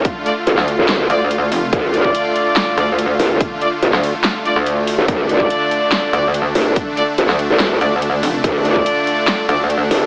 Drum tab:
HH |x-x-x-x-x-x-x-o-|x-x-x-x-x-x-x-o-|x-x-x-o-x-x-x-o-|x-x-x-x-x-x-x-o-|
CP |--------x-------|--------x-------|--------x-------|--------x-------|
SD |-----o--o-------|--------o-------|-----o--o-------|--------o-------|
BD |o---------------|o--o------------|o---------------|o--o------------|

HH |x-x-x-x-x-x-x-o-|x-x-x-x-x-x-x-o-|
CP |--------x-------|--------x-------|
SD |-----o--o-------|--------o-------|
BD |o---------------|o--o------------|